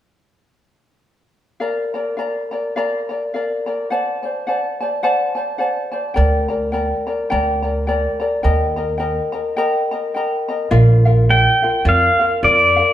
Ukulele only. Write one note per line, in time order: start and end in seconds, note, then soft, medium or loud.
1.60 1.94 A#4 medium
1.60 1.94 D5 medium
1.60 1.94 F5 medium
1.60 1.93 A#5 medium
1.94 2.16 A#4 soft
1.94 2.17 D5 soft
1.94 2.18 A#5 medium
2.17 2.51 A#4 medium
2.17 2.51 D5 medium
2.17 2.51 F5 medium
2.17 2.50 A#5 medium
2.51 2.76 A#4 soft
2.51 2.75 D5 soft
2.51 2.75 A#5 soft
2.76 3.10 A#4 medium
2.76 3.09 D5 medium
2.76 3.09 F5 medium
2.76 3.08 A#5 medium
3.09 3.33 A#4 soft
3.09 3.33 D5 soft
3.09 3.32 A#5 soft
3.34 3.67 A#4 medium
3.34 3.66 D5 medium
3.34 3.67 F5 medium
3.34 3.65 A#5 medium
3.66 3.90 A#4 soft
3.66 3.90 D5 soft
3.66 3.89 A#5 soft
3.90 4.24 C5 medium
3.90 4.22 D5 medium
3.90 4.23 F#5 medium
3.90 4.21 A5 medium
4.23 4.46 C5 soft
4.23 4.46 D5 soft
4.23 4.46 A5 soft
4.47 4.80 C5 medium
4.47 4.80 D5 medium
4.47 4.80 F#5 medium
4.47 4.79 A5 medium
4.81 5.02 C5 soft
4.81 5.03 D5 soft
4.81 5.03 A5 soft
5.03 5.36 C5 medium
5.03 5.35 D5 medium
5.03 5.36 F#5 medium
5.03 5.34 A5 medium
5.35 5.58 C5 soft
5.35 5.58 D5 soft
5.35 5.59 A5 soft
5.58 5.92 C5 medium
5.58 5.91 D5 medium
5.58 5.92 F#5 medium
5.58 5.90 A5 medium
5.92 6.15 C5 soft
5.92 6.15 D5 soft
5.92 6.15 A5 soft
6.14 6.50 A#4 medium
6.14 6.48 D5 medium
6.14 6.49 G5 medium
6.14 6.47 A#5 medium
6.48 6.72 A#4 soft
6.48 6.72 D5 soft
6.48 6.73 A#5 medium
6.72 7.07 A#4 medium
6.72 7.06 D5 medium
6.72 7.06 G5 medium
6.72 7.05 A#5 medium
7.07 7.30 A#4 soft
7.07 7.30 D5 soft
7.07 7.30 A#5 soft
7.30 7.63 A#4 medium
7.30 7.63 D5 medium
7.30 7.64 G5 medium
7.30 7.61 A#5 medium
7.62 7.87 A#4 soft
7.62 7.87 D5 soft
7.62 7.86 A#5 soft
7.87 8.20 A#4 medium
7.87 8.20 D5 medium
7.87 8.21 G5 medium
7.87 8.18 A#5 medium
8.20 8.42 A#4 soft
8.20 8.44 D5 medium
8.20 8.43 A#5 medium
8.43 8.77 A#4 medium
8.43 8.76 D#5 medium
8.43 8.77 G5 medium
8.43 8.75 A#5 medium
8.76 8.98 A#4 soft
8.76 8.98 D#5 medium
8.76 8.99 A#5 soft
8.98 9.33 A#4 medium
8.98 9.32 D#5 medium
8.98 9.33 G5 medium
8.98 9.31 A#5 medium
9.32 9.56 A#4 soft
9.32 9.56 D#5 soft
9.32 9.57 A#5 medium
9.57 9.91 A#4 medium
9.57 9.91 D#5 medium
9.57 9.91 G5 medium
9.57 9.90 A#5 medium
9.91 10.15 A#4 soft
9.91 10.15 D#5 soft
9.91 10.15 A#5 soft
10.14 10.49 A#4 medium
10.14 10.48 D#5 medium
10.14 10.48 G5 medium
10.14 10.47 A#5 medium
10.49 10.70 A#4 soft
10.49 10.71 D#5 soft
10.49 10.71 A#5 medium
10.71 11.05 F4 medium
10.71 11.05 A#4 medium
10.71 11.05 D5 medium
10.71 11.04 F5 medium
11.05 11.28 F4 soft
11.05 11.29 A#4 soft
11.05 11.28 F5 medium
11.29 11.62 F4 medium
11.29 11.62 A#4 medium
11.29 11.62 D5 medium
11.29 11.61 F5 medium
11.63 11.85 F4 soft
11.63 11.85 A#4 soft
11.63 11.85 F5 soft
11.85 12.19 F4 medium
11.85 12.19 A#4 medium
11.85 12.19 D5 medium
11.85 12.18 F5 medium
12.19 12.42 F4 soft
12.19 12.43 A#4 soft
12.19 12.42 F5 soft
12.43 12.76 F4 medium
12.43 12.76 A#4 medium
12.43 12.76 D5 medium
12.43 12.75 F5 medium
12.76 12.93 F4 soft
12.76 12.93 A#4 soft
12.76 12.93 F5 medium